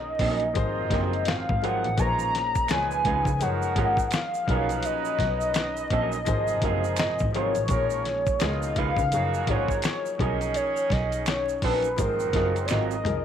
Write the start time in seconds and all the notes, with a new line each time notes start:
Already playing: B1 F3 F#3 A#3 C#4 D#4 G#4 A#4 C#5 D#5
0.19 A#1 F#3 C#4 D#4 A#4, kick, open hi-hat
0.40 closed hi-hat
0.53 G#1 D#3 F3 F#3 G#3 A#3 C4 D#4 F4 G#4 C5, kick, closed hi-hat
0.77 F#1
0.89 F#1 F3 F#3 A#3 D#4 G#4 C5, kick, snare, closed hi-hat
0.93 C4 F4 A#4
1.13 closed hi-hat
1.25 G#1 F5, muted clean electric guitar stroke, snare, closed hi-hat
1.49 G#1, kick
1.61 F3 F#3 A#3 C4 D#4 F4 G#4 A#4 C5 F#5, closed hi-hat
1.84 A1, closed hi-hat
1.97 A#1 F3 G#3 A#3 C#4 D#4 F4 G#4 B4 C#5 A#5, kick, closed hi-hat, shaker
2.07 C5
2.19 shaker
2.35 snare, closed hi-hat
2.55 kick, shaker
2.68 C#2 A#2 C#3 E3 F3 G#3 D#4 F4 G#4 B4 C#5 G#5, finger snap, muted clean electric guitar stroke, snare, closed hi-hat, shaker
2.75 F3
2.91 shaker
3.05 C#2 G#3 D#4 F4 B4, kick, closed hi-hat
3.25 C#3, kick, shaker
3.39 F#1 F3 G#3 A#3 C#4 D#4 G#4 A#4 C#5 F#5, closed hi-hat, shaker
3.62 shaker
3.75 G#1 F3 G#3 A#3 C#4 D#4 F4 G#4 A#4 C#5, kick, closed hi-hat
3.85 D#5
3.97 kick, shaker
4.11 F5, finger snap, snare, closed hi-hat, shaker
4.34 shaker
4.47 B1 A#2 F3 F#3 C#4 D#4 G#4 B4, kick, closed hi-hat
4.51 D#4 A#4
4.56 C#5
4.69 closed hi-hat, shaker
4.83 D#5, closed hi-hat, shaker
5.05 shaker
5.19 B1, kick, snare, closed hi-hat
5.41 shaker
5.54 finger snap, muted clean electric guitar stroke, snare, closed hi-hat, shaker
5.77 shaker
5.90 A#1 F#3 C#4 D#4 A#4, kick, closed hi-hat
6.12 shaker
6.25 G#1 C3 F3 G#3 A#3 D#4 G#4 C5, kick, closed hi-hat, shaker
6.47 F#1, shaker
6.61 F#1 F3 F#3 A#3 C4 D#4 F4 G#4 A#4, kick, closed hi-hat
6.65 A#4
6.71 C5
6.84 shaker
6.97 G#1 D#5, finger snap, snare, closed hi-hat, shaker
7.19 G#1, kick, shaker
7.32 F3 F#3 A#3 C4 D#4 F4 G#4 A#4 C5 C#5, closed hi-hat
7.55 A1, closed hi-hat, shaker
7.68 A#1 F3 A#3 C#4 D#4 G#4 A#4 C#5, kick, closed hi-hat, shaker
7.90 shaker
8.05 snare, closed hi-hat
8.27 kick, shaker
8.39 C#2 B2 C#3 F3 G#3 A#3 D#4 F4 G#4 C#5 D#5 F5, finger snap, muted clean electric guitar stroke, snare, closed hi-hat, shaker
8.62 shaker
8.76 C#2 G#3 D#4 F4 B4 F5, kick, closed hi-hat
8.97 C#3, kick, shaker
9.11 F#1 C#3 F3 F#3 A#3 D#4 F#4 G#4 A#4 C#5, closed hi-hat, shaker
9.34 shaker
9.47 G#1 G#3 A#3 D#4 F4 G#4 C5 C#5, kick, closed hi-hat
9.51 C#4 F4 A#4
9.56 C#5
9.68 kick, shaker
9.82 finger snap, snare, closed hi-hat, shaker
10.06 shaker
10.18 B1 D#3 F3 F#3 A#3 C#4 D#4 G#4 A#4 C#5 D#5, kick, closed hi-hat
10.41 closed hi-hat, shaker
10.54 C#5, closed hi-hat, shaker
10.77 shaker
10.90 B1 D#5, kick, snare, closed hi-hat
11.12 closed hi-hat, shaker
11.26 C#5, finger snap, muted clean electric guitar stroke, snare, closed hi-hat, shaker
11.49 shaker
11.62 A#1 F#3 C#4 D#4 A#4 B4, kick, open hi-hat
11.83 closed hi-hat, shaker
11.96 G#1 D#3 F3 F#3 G#3 A#3 C4 D#4 F#4 G#4 A#4 C5, kick, closed hi-hat, shaker
12.20 F#1, shaker
12.33 F#1 F#3 A#3 C4 D#4 F4 G#4 A#4 D#5, kick, snare, closed hi-hat
12.56 closed hi-hat, shaker
12.65 D5, finger snap, closed hi-hat, shaker
12.71 G#1 F#3 C4 F4 A#4 D#5, snare
12.91 shaker
13.04 C2 F3 A#3 D#4 G#4 A#4, closed hi-hat, mid tom